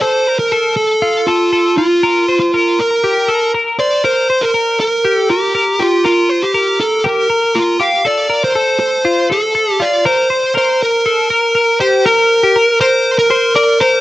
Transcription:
0.01 0.27 A4 medium
0.01 0.39 C5 medium
0.27 0.52 A#4 medium
0.39 0.76 A#4 medium
0.52 1.00 A4 medium
0.76 1.29 A4 medium
1.02 1.28 F4 medium
1.27 1.76 F4 medium
1.27 1.52 A4 medium
1.53 1.78 A4 medium
1.78 2.38 F4 medium
1.78 2.04 F4 medium
2.03 2.28 A#4 medium
2.29 2.53 C5 medium
2.40 2.79 F4 medium
2.54 3.01 A#4 medium
2.79 3.50 A#4 medium
3.04 3.29 G4 medium
3.28 3.54 A4 medium
3.54 3.79 A#4 medium
3.79 4.04 C5 medium
3.79 4.04 D5 medium
4.05 4.30 A#4 medium
4.05 4.43 C5 medium
4.30 4.54 C5 medium
4.42 4.77 A#4 medium
4.54 5.02 A#4 medium
4.80 5.18 A#4 medium
5.05 5.30 G4 medium
5.18 5.30 A4 medium
5.30 5.82 G4 medium
5.30 5.54 A#4 medium
5.55 5.80 A#4 medium
5.79 6.05 F4 medium
5.79 6.05 G4 medium
6.05 6.44 F4 medium
6.05 6.29 A#4 medium
6.29 6.54 C5 medium
6.43 6.80 G4 medium
6.54 7.02 A#4 medium
6.80 7.04 A4 medium
7.04 7.29 G4 medium
7.04 7.57 A#4 medium
7.30 7.54 A#4 medium
7.55 7.81 F4 medium
7.55 7.79 A#4 medium
7.79 8.04 G4 medium
7.79 8.06 F5 medium
8.05 8.29 A4 medium
8.05 8.44 D5 medium
8.30 8.55 A#4 medium
8.44 8.79 C5 medium
8.55 9.03 A4 medium
8.80 9.27 C5 medium
9.05 9.30 F4 medium
9.30 9.54 A4 medium
9.30 9.83 A4 medium
9.55 9.80 A4 medium
9.80 10.05 F4 medium
9.80 10.06 D5 medium
10.05 10.30 A#4 medium
10.05 10.53 C5 medium
10.30 10.54 C5 medium
10.55 11.02 A#4 medium
10.55 10.80 C5 medium
10.83 11.78 A#4 medium
11.06 11.30 A4 medium
11.30 11.54 A#4 medium
11.55 11.81 A#4 medium
11.81 12.06 G4 medium
11.81 12.06 C5 medium
12.06 12.41 A#4 loud
12.06 12.77 A#4 medium
12.43 12.56 G4 medium
12.56 12.79 A#4 medium
12.81 13.28 A#4 medium
12.81 13.16 C5 medium
13.19 13.55 A#4 medium
13.31 13.55 C5 medium
13.55 13.81 A#4 medium
13.55 13.80 D5 medium
13.80 14.01 A#4 medium
13.80 14.01 C5 medium

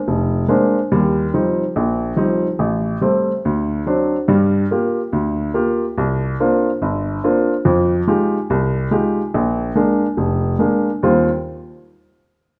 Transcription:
0.08 0.43 F1 medium
0.48 0.78 G#3 medium
0.48 0.78 A#3 soft
0.48 0.78 C4 soft
0.48 0.78 D4 medium
0.92 1.28 D#2 medium
0.92 1.28 G3 medium
1.34 1.62 F3 medium
1.34 1.63 G3 soft
1.34 1.63 C4 soft
1.34 1.63 D#4 medium
1.76 2.12 A#1 medium
2.16 2.46 F3 medium
2.16 2.46 G3 soft
2.16 2.46 C4 soft
2.16 2.46 D#4 medium
2.59 2.96 A1 medium
3.01 3.31 G3 medium
3.01 3.31 A3 soft
3.01 3.31 C4 medium
3.45 3.81 D2 medium
3.86 4.15 F#3 medium
3.86 4.15 C4 soft
3.86 4.16 D4 medium
4.28 4.64 G2 medium
4.28 4.65 G3 medium
4.71 5.00 A#3 medium
4.71 5.00 F4 soft
4.71 5.00 G4 medium
5.13 5.49 D2 medium
5.54 5.83 A#3 soft
5.54 5.84 F4 medium
5.54 5.84 G4 medium
5.98 6.34 C2 medium
6.40 6.69 A#3 medium
6.40 6.69 C4 soft
6.40 6.69 D4 soft
6.40 6.69 F4 medium
6.82 7.18 G1 medium
7.24 7.53 A#3 medium
7.24 7.53 C4 soft
7.24 7.53 D4 soft
7.24 7.53 F4 medium
7.65 8.02 F2 medium
7.65 8.02 F3 medium
8.07 8.37 G#3 medium
8.07 8.37 D#4 medium
8.07 8.37 F4 medium
8.07 8.37 G4 medium
8.50 8.86 C2 medium
8.91 9.21 G#3 medium
8.91 9.21 D#4 soft
8.91 9.21 F4 soft
8.91 9.21 G4 medium
9.34 9.70 A#1 medium
9.75 10.05 G#3 medium
9.75 10.05 A#3 soft
9.75 10.05 D4 medium
10.17 10.54 F1 medium
10.59 10.89 G#3 soft
10.59 10.89 A#3 soft
10.59 10.89 D4 medium
11.03 11.27 D#2 medium
11.03 11.27 D#3 medium
11.03 11.27 G3 medium
11.03 11.28 C4 medium
11.03 11.28 F4 medium

